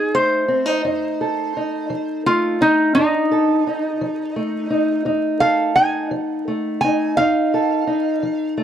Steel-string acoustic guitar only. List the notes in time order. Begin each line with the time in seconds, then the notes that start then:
Already playing: F3 D#4
0.15 A3
0.48 C4
0.66 D#4
0.85 F2 D#4
1.21 A4
1.57 D#4
1.90 F3
2.26 A3
2.61 D#4
2.95 F2 D#4
3.31 A4
3.67 D#4
4.01 F3
4.36 A3
4.70 D#4
5.05 F2 D#4
5.41 A4
5.76 D#4
6.11 F3
6.48 A3
6.84 D#4
7.18 F2 D#4
7.54 A4
7.87 D#4
8.23 F3
8.58 A3